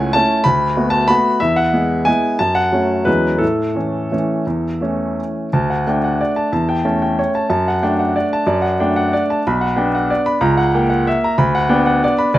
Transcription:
Already playing: C#2 A3 C#4 E4 G#5
0.13 A3 C#4 E4 A5
0.44 D2 B5
0.77 A3 B3 F#4
0.90 A5
1.08 A3 B3 F#4 B5
1.40 E2 E5
1.56 F#5
1.73 G#3 B3 E4
2.05 G#3 B3 E4 G#5
2.39 F#2 A5
2.55 F#5
2.72 F#3 A3 C#4
3.05 E2 F#3 G#3 C#4 B4
3.38 A2 A4
3.75 E3 A3 C#4
4.12 E3 A3 C#4
4.47 E2
4.81 E3 A3 C#4
5.53 D2 A5
5.70 F#5
5.87 A3 D4 G5
6.04 F#5
6.21 D5
6.36 A5
6.52 E2 A5
6.69 G5
6.85 A3 C#4 A5
7.02 G5
7.19 C#5
7.35 A5
7.50 F#2 A5
7.68 F#5
7.83 A3 D4 G5
7.99 F#5
8.16 D5
8.33 A5
8.47 F#2 D5
8.62 F#5
8.80 A3 D4 G5
8.96 F#5
9.13 D5
9.30 A5
9.47 B1 B5
9.61 F#5
9.76 B3 D4 G5
9.95 F#5
10.10 D5
10.26 B5
10.41 C#2 A#5
10.57 F#5
10.74 A#3 G5
10.90 F#5
11.07 E5
11.24 A#5
11.38 D2 B5
11.55 F#5
11.69 B3 D4 G5
11.86 F#5
12.04 D5
12.18 B5
12.34 D2 D5

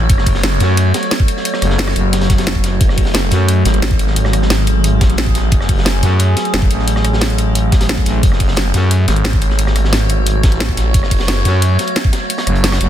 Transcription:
Already playing: F#3 A3 C#5
0.09 F#1, kick, closed hi-hat
0.18 cross-stick, snare
0.26 kick, closed hi-hat, open hi-hat
0.34 snare
0.43 snare, closed hi-hat
0.60 F#2, snare, closed hi-hat
0.77 closed hi-hat
0.94 snare, closed hi-hat
1.03 closed hi-hat
1.11 snare, closed hi-hat
1.20 kick
1.28 closed hi-hat
1.37 snare
1.45 closed hi-hat
1.53 cross-stick, snare
1.62 F#1, cross-stick, closed hi-hat
1.70 snare
1.78 snare, closed hi-hat
1.88 cross-stick, snare
1.96 F#1, closed hi-hat
2.13 snare, closed hi-hat
2.21 snare, closed hi-hat
2.30 kick, snare, closed hi-hat
2.38 snare, closed hi-hat
2.47 snare, closed hi-hat
2.55 kick
2.63 snare, closed hi-hat
2.81 F#1 G#4, kick, closed hi-hat
2.89 cross-stick, snare
2.98 kick, closed hi-hat, open hi-hat
3.06 snare
3.14 snare, closed hi-hat
3.31 F#2, snare, closed hi-hat
3.48 closed hi-hat
3.65 G#1, snare, closed hi-hat
3.74 closed hi-hat
3.82 snare, closed hi-hat
3.91 kick
3.99 closed hi-hat
4.07 snare
4.16 closed hi-hat
4.25 cross-stick, snare
4.33 cross-stick, closed hi-hat
4.42 snare
4.50 snare, closed hi-hat
4.67 closed hi-hat
4.84 closed hi-hat
5.01 A1, kick, snare, closed hi-hat
5.10 closed hi-hat
5.18 snare, closed hi-hat
5.27 kick
5.35 A1, snare, closed hi-hat
5.52 F#1, kick, closed hi-hat
5.61 cross-stick, snare
5.69 kick, closed hi-hat, open hi-hat
5.78 snare
5.85 snare, closed hi-hat
6.03 F#2, snare, closed hi-hat
6.19 closed hi-hat
6.37 snare, closed hi-hat
6.45 closed hi-hat
6.54 F#1, snare, closed hi-hat
6.62 kick
6.70 A1, closed hi-hat
6.79 snare
6.88 closed hi-hat
6.96 cross-stick, snare
7.04 cross-stick, closed hi-hat
7.13 snare
7.21 snare, closed hi-hat
7.30 closed hi-hat
7.38 closed hi-hat
7.55 closed hi-hat
7.72 kick, snare, closed hi-hat
7.81 snare, closed hi-hat
7.89 snare, closed hi-hat
7.98 kick, closed hi-hat
8.06 A1, snare, closed hi-hat
8.23 F#1 C#5, kick, closed hi-hat
8.32 cross-stick, snare
8.40 kick, closed hi-hat, open hi-hat
8.48 snare
8.56 snare, closed hi-hat
8.74 F#2, snare, closed hi-hat
8.91 closed hi-hat
9.08 G#1, snare, closed hi-hat
9.16 closed hi-hat
9.24 snare, closed hi-hat
9.33 kick
9.41 closed hi-hat
9.50 snare
9.58 closed hi-hat
9.67 cross-stick, snare
9.76 cross-stick, closed hi-hat
9.84 snare
9.93 snare, closed hi-hat
10.09 closed hi-hat
10.26 closed hi-hat
10.43 A1, kick, snare, closed hi-hat
10.52 closed hi-hat
10.60 snare, closed hi-hat
10.69 kick
10.77 A1, snare, closed hi-hat
10.94 F#1, kick, closed hi-hat
11.03 cross-stick, snare
11.11 kick, closed hi-hat, open hi-hat
11.19 snare
11.28 snare, closed hi-hat
11.45 F#2, snare, closed hi-hat
11.62 closed hi-hat
11.79 snare, closed hi-hat
11.88 closed hi-hat
11.96 snare, closed hi-hat
12.04 kick
12.13 snare, closed hi-hat
12.30 closed hi-hat
12.38 cross-stick, snare, closed hi-hat
12.47 F#1, cross-stick, closed hi-hat
12.56 closed hi-hat
12.64 snare, closed hi-hat
12.72 cross-stick, snare, closed hi-hat
12.81 F#1, closed hi-hat

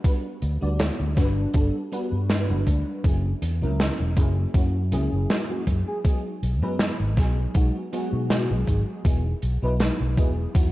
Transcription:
0.04 G3 B3 D4 F#4 B4, kick, closed hi-hat
0.42 D2, closed hi-hat
0.61 D2 G3 B3 D4 F#4 D5
0.79 snare, closed hi-hat
1.00 D2
1.16 G1 G3 B3 D4 F#4 B4, kick, snare, closed hi-hat
1.54 G1 G3 B3 D4 F#4 A4, kick, closed hi-hat
1.92 G3 B3 D4 F#4 B4, closed hi-hat
2.12 G2
2.30 D4, snare, closed hi-hat
2.49 G1 G3 B3 D4 F#4 B4
2.67 D2, kick, closed hi-hat
3.04 F#1 F#3 A#3 C#4 E4 G#4, kick, closed hi-hat
3.42 E2, closed hi-hat
3.62 C#2 F#3 A#3 C#4 E4 A#4
3.80 snare, closed hi-hat
4.00 E1
4.17 F#1 F#3 A#3 C#4 E4 G#4, kick, closed hi-hat
4.54 F#2 F#3 A#3 C#4 E4 F#4, kick, closed hi-hat
4.92 C#2 F#3 A#3 C#4 E4 G#4, closed hi-hat
5.12 F#1
5.30 F#4, snare, closed hi-hat
5.49 F#3 A#3 C#4 E4 F#4 G#4
5.67 F#2, kick, closed hi-hat
5.87 G#4
6.04 F#3 G#3 B3 D#4 G#4, kick, closed hi-hat
6.43 B1, closed hi-hat
6.62 F#2 F#3 G#3 B3 D#4 B4
6.79 snare, closed hi-hat
7.00 G#1
7.17 B1 F#3 G#3 B3 D#4 G#4, kick, snare, closed hi-hat
7.55 B1 F#3 G#3 B3 D#4 F#4, kick, closed hi-hat
7.92 F#3 G#3 B3 D#4 F#4 G#4, closed hi-hat
8.13 B2
8.30 snare, closed hi-hat
8.50 B1 F#3 G#3 B3 D#4 G#4
8.68 G#1, kick, closed hi-hat
9.05 E1 F#3 B3 D#4 E4 G#4, kick, closed hi-hat
9.42 B1, closed hi-hat
9.62 B1 F#3 B3 D#4 E4 B4
9.80 snare, closed hi-hat
10.00 B1
10.17 E1 F#3 B3 D#4 E4 G#4, kick, closed hi-hat
10.54 E2 F#3 B3 D#4 E4 F#4, kick, closed hi-hat

